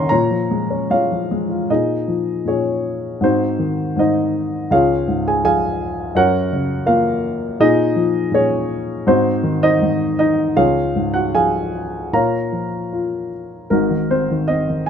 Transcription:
Already playing: F#2 C#3 D#3 A#3 C#4 A#4 F5 F#5 G#5 A#5 C6
0.09 A#2 C#5 A#5
0.31 F3
0.51 G#3
0.70 C#4
0.90 G#3 F4 C#5 F5
1.11 F3
1.31 G#3
1.49 F4
1.70 A#2 D#4 G#4 D#5
2.08 F3
2.45 A#2 C#4 G#4 C#5
3.21 G#2 C4 D#4 F#4 C5
3.59 D#3
3.96 G#2 D#4 C5 D#5
4.71 C#2 F4 G#4 C#5 F5
5.08 G#2
5.27 G#4 G#5
5.44 F3 G#4 F5 G#5
6.15 F#2 F#4 A#4 C#5 F#5
6.53 C#3
6.86 A#3 F4 A#4 F5
7.60 A#2 D#4 G#4 D#5
7.96 F3
8.32 A#2 C#4 G#4 C#5
9.07 G#2 C4 D#4 F#4 C5
9.43 D#3
9.63 D#4 C5 D#5
9.82 G#2
10.19 D#4 D#5
10.56 C#2 F4 G#4 C#5 F5
10.96 G#2
11.14 F#4 F#5
11.35 F3 G#4 F5 G#5
12.13 A#2 A#4 C#5 F5 A#5
12.52 F3
12.93 F4
13.70 G#1 G#2 D#4 F#4 A#4
13.91 D#3
14.11 C4 C5
14.31 D#3
14.48 C4 D#5
14.70 D#3
14.86 G#5

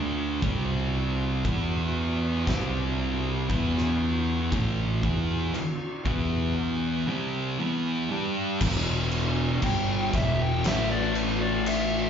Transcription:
Already playing: D2 D3 A3 D4
0.42 C2 C3 G3 C4, kick, crash
1.45 E2 E3 B3 E4, kick, crash
2.47 C2 C3 G3 C4, kick, snare, crash
3.49 E2 E3 B3 E4, kick, crash
3.77 snare
4.52 A1 A2 E3 A3, kick, crash
5.03 E2 E3 B3 E4, kick
5.54 muted fingered electric bass stroke, muted distorted electric guitar stroke, crash
6.05 E2 E3 B3 E4, kick
7.08 C3 G3 C4
7.60 E3 B3 E4
8.11 G3 D4 G4
8.61 E1 E2 B2 E3, kick, crash
9.12 crash
9.62 G1 G2 D3 G3 G5, kick, crash
10.13 E1 E2 B2 E3 E5, kick, snare, crash
10.41 G5
10.64 A1 A2 E3 A3 E5, snare, crash
10.91 D5
11.15 B4, crash
11.41 D5
11.66 E5, crash

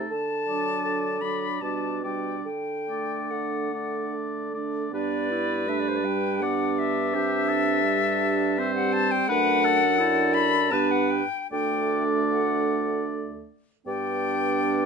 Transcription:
Already playing: A3 D#4 A4
0.10 D3 A5
0.48 F#3 D4 D5
0.85 D3
1.21 F#3 D4 D5 B5
1.61 B2 G3 D4 D5 A5
2.03 G3 D4 D5 G5
2.45 D3 G5
2.89 A3 D4 D5
3.30 D3 F#5
3.71 A3 D4 D5
4.13 D3
4.53 A3 D4 D5
4.92 G2 B3 D4 B4 D5
5.31 E4
5.66 A3 D4 E5
5.80 D5
5.88 C5
5.96 D5
6.03 G3 G5
6.42 B3 D5 F#5
6.79 E5
7.14 G2 C4 G4
7.49 A4
7.84 G3
8.58 C4 C5
8.75 F#5
8.93 A5
9.11 G5
9.28 F#2 A3 D4 B4 F#5
9.65 A4
9.98 D4 E4 A4
10.34 B5
10.71 G2 B3 D4 B4 A5
10.91 F#5
11.11 G5
11.51 D2 A3 D4 D5 G5
12.31 F#5
13.86 G2 B3 D4 D5 G5

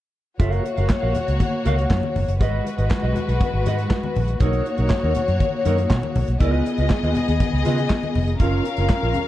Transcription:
0.39 F#1 A#3 F#4 A#4 C#5 F5, kick, closed hi-hat, muted conga, low conga
0.52 closed hi-hat
0.64 muted clean electric guitar stroke, closed hi-hat, muted conga
0.77 F#1 F#4 A#4 F5, closed hi-hat
0.89 muted clean electric guitar stroke, kick, snare, clap, muted conga
1.01 A#1 F#4 A#4 F5
1.14 muted clean electric guitar stroke, closed hi-hat, muted conga, high conga, low conga
1.27 C#2, muted clean electric guitar stroke, closed hi-hat
1.40 muted clean electric guitar stroke, kick, closed hi-hat, muted conga, high conga
1.53 muted clean electric guitar stroke
1.65 C#2 F#4 A#4 F5, closed hi-hat, high conga
1.78 muted clean electric guitar stroke, closed hi-hat
1.90 F#2, muted clean electric guitar stroke, kick, snare, clap, muted conga
2.03 muted clean electric guitar stroke, high conga
2.16 F#1, open hi-hat, high conga, low conga
2.28 F#1, muted clean electric guitar stroke, closed hi-hat
2.40 G#1 G#3 F#4 B4 D#5, kick, closed hi-hat, low conga
2.66 muted clean electric guitar stroke, closed hi-hat, muted conga
2.78 G#1 F#4 B4 D#5, closed hi-hat
2.90 muted clean electric guitar stroke, kick, snare, clap
3.02 B1 F#4 B4 D#5
3.15 muted clean electric guitar stroke, closed hi-hat, high conga, low conga
3.28 B1, muted clean electric guitar stroke, closed hi-hat
3.40 muted clean electric guitar stroke, kick, closed hi-hat, muted conga, high conga
3.53 G#1, muted clean electric guitar stroke
3.66 G#2 F#4 B4 D#5, closed hi-hat, muted conga, high conga
3.78 muted clean electric guitar stroke, closed hi-hat
3.90 muted clean electric guitar stroke, kick, snare, clap
4.03 muted clean electric guitar stroke, high conga
4.15 A#1, open hi-hat, muted conga, high conga, low conga
4.28 muted clean electric guitar stroke, closed hi-hat
4.40 B1 A#3 D#4 F#4 A#4 C#5, kick, closed hi-hat, low conga
4.53 closed hi-hat
4.65 muted clean electric guitar stroke, closed hi-hat, muted conga
4.78 B1 D#4 A#4 C#5, closed hi-hat
4.90 muted clean electric guitar stroke, kick, snare, clap
5.03 D#2 D#4 A#4 C#5
5.15 muted clean electric guitar stroke, closed hi-hat, muted conga, high conga, low conga
5.28 F#2, muted clean electric guitar stroke, closed hi-hat
5.40 muted clean electric guitar stroke, kick, closed hi-hat, muted conga, high conga
5.53 muted clean electric guitar stroke
5.65 F#2 D#4 A#4 C#5, closed hi-hat, muted conga, high conga
5.78 muted clean electric guitar stroke, closed hi-hat
5.90 B2, muted clean electric guitar stroke, kick, snare, clap, muted conga
6.03 muted clean electric guitar stroke, high conga
6.15 B1, open hi-hat, muted conga, high conga, low conga
6.28 B1, muted clean electric guitar stroke, closed hi-hat
6.40 C#2 B3 F4 G#4 B4 D#5, kick, closed hi-hat, low conga
6.66 muted clean electric guitar stroke, closed hi-hat, muted conga
6.78 C#2 F4 B4 D#5, closed hi-hat
6.90 kick, snare, clap, muted conga
7.02 D#2 F4 B4 D#5, closed hi-hat
7.15 muted clean electric guitar stroke, closed hi-hat, high conga, low conga
7.28 D#2, muted clean electric guitar stroke, closed hi-hat
7.40 muted clean electric guitar stroke, kick, closed hi-hat, muted conga, high conga
7.53 C#2, muted clean electric guitar stroke
7.65 C#3 F4 B4 D#5, closed hi-hat, muted conga, high conga
7.78 muted clean electric guitar stroke, closed hi-hat
7.90 muted clean electric guitar stroke, kick, snare, clap, muted conga
8.03 muted clean electric guitar stroke, closed hi-hat, high conga
8.15 F1, open hi-hat, high conga, low conga
8.27 muted clean electric guitar stroke, closed hi-hat
8.40 F#1 C#4 F4 A#4 F5, kick, closed hi-hat, muted conga, low conga
8.65 muted clean electric guitar stroke, closed hi-hat, muted conga
8.77 F#1 C#4 F4 A#4, closed hi-hat
8.89 muted clean electric guitar stroke, kick, snare, clap
9.02 A#1 C#4 F4 A#4
9.14 muted clean electric guitar stroke, closed hi-hat, high conga, low conga

